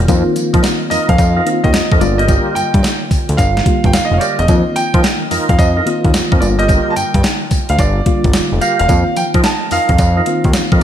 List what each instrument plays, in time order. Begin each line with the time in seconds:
Already playing: fm electric piano A3 A#3 F4
0.08 analog synth bass F2, fm electric piano D#3 A#3 C4 F4, kick, closed hi-hat, tambourine, cowbell
0.36 analog synth bass F3, closed hi-hat, tambourine
0.53 analog synth bass F3, tonewheel organ D#4 F4 A#4, kick, closed hi-hat
0.63 snare, closed hi-hat, tambourine, cowbell
0.90 analog synth bass F2, tonewheel organ D#4 F4 A#4, grand piano D#5, open hi-hat, tambourine
1.09 analog synth bass F2, grand piano F5, kick, closed hi-hat
1.18 analog synth bass F2, kick, closed hi-hat, tambourine, cowbell
1.36 tonewheel organ D#4 F4 A#4
1.45 fm electric piano D#3 A#3 C4 D#4, closed hi-hat
1.53 fm electric piano F4
1.64 analog synth bass D#2, grand piano D#5, kick, closed hi-hat
1.73 analog synth bass F2, snare, closed hi-hat, tambourine, cowbell
1.92 analog synth bass F2, tonewheel organ D#4 F4 A#4, kick
2.01 analog synth bass G1, fm electric piano D3 G3 A3 F4, grand piano D5, closed hi-hat, tambourine
2.08 fm electric piano A#3
2.18 tonewheel organ F4 G4 A#4, grand piano D#5, closed hi-hat
2.28 tonewheel organ F4 G4 A#4, kick, closed hi-hat, tambourine, cowbell
2.55 analog synth bass G2, grand piano G5, closed hi-hat, tambourine
2.74 analog synth bass G2, kick, closed hi-hat
2.83 snare, closed hi-hat, tambourine, cowbell
3.11 analog synth bass D2, kick, open hi-hat, tambourine
3.29 analog synth bass D2, closed hi-hat
3.37 analog synth bass G1, grand piano F5, kick, closed hi-hat, tambourine, cowbell
3.57 snare
3.66 fm electric piano D3 G3 A#3 F4, kick, closed hi-hat
3.84 analog synth bass G1, grand piano G5, kick, closed hi-hat
3.93 analog synth bass F1, grand piano F5, snare, closed hi-hat, tambourine, cowbell
4.05 grand piano D#5
4.11 analog synth bass F1, grand piano F5
4.18 tonewheel organ F4 G4 A#4, grand piano C#5 D5, closed hi-hat, tambourine
4.39 analog synth bass E1, grand piano D#5, closed hi-hat
4.48 analog synth bass F2, fm electric piano D#3 A#3 C4 F4, kick, closed hi-hat, tambourine, cowbell
4.76 analog synth bass F3, grand piano G5, closed hi-hat, tambourine
4.94 analog synth bass F3, tonewheel organ D#4 F4 A#4, kick, closed hi-hat
5.03 snare, closed hi-hat, tambourine, cowbell
5.31 analog synth bass F2, tonewheel organ D#4 F4 A#4, open hi-hat, tambourine
5.49 analog synth bass F2, grand piano F5, kick, closed hi-hat
5.58 analog synth bass F2, grand piano D#5, kick, closed hi-hat, tambourine, cowbell
5.77 tonewheel organ D#4 F4 A#4
5.86 fm electric piano D#3 A#3 C4 F4, closed hi-hat
6.04 analog synth bass D#2, kick, closed hi-hat
6.14 analog synth bass F2, snare, closed hi-hat, tambourine, cowbell
6.32 analog synth bass F2, tonewheel organ D#4 F4 A#4, kick
6.40 analog synth bass G1, fm electric piano D3 G3 A#3 F4, grand piano D5, closed hi-hat, tambourine
6.59 tonewheel organ F4 G4 A#4, grand piano D#5, closed hi-hat
6.68 tonewheel organ F4 G4 A#4, kick, closed hi-hat, tambourine, cowbell
6.90 grand piano A5
6.96 analog synth bass G2, grand piano G5, closed hi-hat, tambourine
7.14 analog synth bass G2, kick, closed hi-hat
7.23 snare, closed hi-hat, tambourine, cowbell
7.51 analog synth bass D2, kick, open hi-hat, tambourine
7.69 analog synth bass D2, grand piano F5, closed hi-hat
7.79 analog synth bass G1, grand piano D5, kick, closed hi-hat, tambourine, cowbell
8.06 fm electric piano D3 G3 A#3 F4, kick, closed hi-hat
8.24 analog synth bass G1, kick, closed hi-hat
8.33 analog synth bass F1, snare, closed hi-hat, tambourine, cowbell
8.52 analog synth bass F1
8.61 tonewheel organ F4 G4 A#4, grand piano F5, closed hi-hat, tambourine
8.79 analog synth bass E1, grand piano F5, closed hi-hat
8.88 analog synth bass F2, fm electric piano D#3 A#3 C4 F4, kick, closed hi-hat, tambourine, cowbell
9.16 analog synth bass F3, grand piano G5, closed hi-hat, tambourine
9.34 analog synth bass F3, tonewheel organ D#4 F4 A#4, kick, closed hi-hat
9.44 grand piano A5, snare, closed hi-hat, tambourine, cowbell
9.71 analog synth bass F2, tonewheel organ D#4 F4 A#4, grand piano F5, open hi-hat, tambourine
9.89 analog synth bass F2, kick, closed hi-hat
9.98 analog synth bass F2, kick, closed hi-hat, tambourine, cowbell
10.17 tonewheel organ D#4 F4 A#4
10.26 fm electric piano D#3 A#3 C4 F4, closed hi-hat
10.44 analog synth bass D#2, kick, closed hi-hat
10.53 analog synth bass F2, snare, closed hi-hat, tambourine, cowbell
10.72 analog synth bass F2, tonewheel organ D#4 F4 A#4, kick